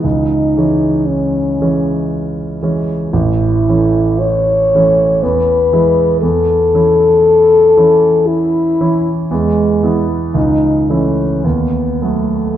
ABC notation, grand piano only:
X:1
M:3/4
L:1/8
Q:1/4=58
K:Alyd
V:1 name="Grand piano" clef=bass
C,, [E,G,C]2 [E,G,C]2 [E,G,C] | A,,, [E,A,C]2 [E,A,C] E,, [E,G,E] | E,, [E,CE]2 [E,CE]2 [E,CE] | E,, [E,B,E] C,, [E,A,E] D,, [F,A,B,] |]